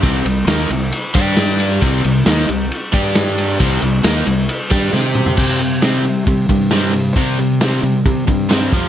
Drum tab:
CC |----------------|----------------|----------------|x---------------|
RD |x-x-x-x-x-x-x-x-|x-x-x-x-x-x-x-x-|x-x-x-x-x-x-----|----------------|
HH |----------------|----------------|----------------|--o-o-o-o-o-o-o-|
SD |----o-------o---|----oo------o---|----o-------o---|----o-------o---|
T2 |----------------|----------------|--------------o-|----------------|
FT |----------------|----------------|---------------o|----------------|
BD |o---------o-----|o---------o-----|o---------o-----|o-------o-o-----|

CC |----------------|
RD |----------------|
HH |o-o-o-o-o-o-o-o-|
SD |----o-------o---|
T2 |----------------|
FT |----------------|
BD |o-------o-o---o-|